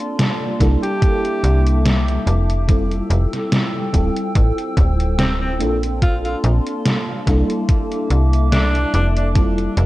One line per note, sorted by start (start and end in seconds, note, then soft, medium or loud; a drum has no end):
0.00 0.52 A#3 medium
0.00 2.65 A#3 medium
0.00 0.53 C4 medium
0.00 0.53 D4 medium
0.00 0.53 F4 medium
0.00 0.54 A4 medium
0.00 0.59 D5 medium
0.00 2.65 A5 medium
0.00 0.59 C6 medium
0.00 closed hi-hat soft
0.19 snare loud
0.19 closed hi-hat medium
0.59 0.77 C2 medium
0.59 2.60 G3 medium
0.59 2.61 A#3 medium
0.59 2.61 D4 medium
0.59 2.62 E4 medium
0.59 2.62 A4 loud
0.59 2.67 E5 medium
0.59 2.67 D6 medium
0.59 kick medium
0.59 snare soft
0.59 closed hi-hat medium
0.83 1.66 G4 medium
0.83 closed hi-hat soft
1.02 kick loud
1.02 closed hi-hat medium
1.25 closed hi-hat soft
1.44 2.18 C2 medium
1.44 closed hi-hat medium
1.67 closed hi-hat soft
1.86 snare loud
1.86 closed hi-hat medium
2.08 closed hi-hat soft
2.27 3.02 F1 medium
2.27 closed hi-hat medium
2.50 closed hi-hat soft
2.67 3.86 G3 medium
2.67 3.86 C4 medium
2.67 3.86 E4 medium
2.67 3.87 F4 medium
2.67 3.87 A4 medium
2.67 5.58 G5 medium
2.67 kick loud
2.67 closed hi-hat medium
2.91 closed hi-hat soft
3.10 3.27 F1 loud
3.10 closed hi-hat medium
3.33 snare soft
3.33 closed hi-hat soft
3.52 snare loud
3.52 closed hi-hat medium
3.92 4.10 D1 medium
3.92 5.52 G3 medium
3.92 5.53 C4 medium
3.92 5.53 E4 medium
3.92 5.53 F4 medium
3.92 5.54 A4 medium
3.92 5.59 C5 medium
3.92 5.59 E6 medium
3.92 kick medium
3.92 closed hi-hat medium
4.16 closed hi-hat soft
4.35 4.52 A1 medium
4.35 kick loud
4.35 closed hi-hat medium
4.58 closed hi-hat soft
4.77 5.62 D1 loud
4.77 kick loud
4.77 closed hi-hat medium
5.00 closed hi-hat soft
5.19 5.33 C4 medium
5.19 snare loud
5.19 closed hi-hat medium
5.41 5.54 C4 medium
5.59 6.35 A#1 loud
5.59 7.19 A#3 medium
5.59 9.32 A#3 medium
5.59 7.19 C4 medium
5.59 7.20 D4 medium
5.59 7.20 F4 medium
5.59 7.20 A4 medium
5.59 7.25 D5 medium
5.59 9.86 A5 medium
5.59 7.25 C6 medium
5.59 closed hi-hat medium
5.83 closed hi-hat soft
6.02 6.17 F4 medium
6.02 kick loud
6.02 closed hi-hat medium
6.25 6.37 F4 medium
6.25 closed hi-hat soft
6.44 6.60 A#1 loud
6.44 closed hi-hat medium
6.67 closed hi-hat soft
6.86 snare loud
6.86 closed hi-hat medium
7.26 7.43 C2 medium
7.26 9.27 G3 medium
7.26 9.28 A#3 medium
7.26 9.28 D4 medium
7.26 9.28 E4 medium
7.26 9.29 A4 loud
7.26 9.33 E5 medium
7.26 9.33 D6 loud
7.26 kick medium
7.26 snare soft
7.26 closed hi-hat medium
7.50 closed hi-hat soft
7.69 kick loud
7.69 closed hi-hat medium
7.92 closed hi-hat soft
8.10 8.85 C2 medium
8.10 closed hi-hat medium
8.33 closed hi-hat soft
8.52 8.90 D4 medium
8.52 snare loud
8.52 closed hi-hat medium
8.75 closed hi-hat soft
8.94 9.68 F1 medium
8.94 9.09 D4 medium
8.94 closed hi-hat medium
9.17 9.29 D4 medium
9.17 closed hi-hat soft
9.34 9.86 G3 medium
9.34 9.86 C4 medium
9.34 9.86 E4 medium
9.34 9.86 F4 medium
9.34 9.86 G4 medium
9.34 9.86 A4 medium
9.34 9.86 E6 medium
9.34 kick loud
9.34 closed hi-hat medium
9.58 closed hi-hat soft
9.77 9.86 F1 loud
9.77 closed hi-hat medium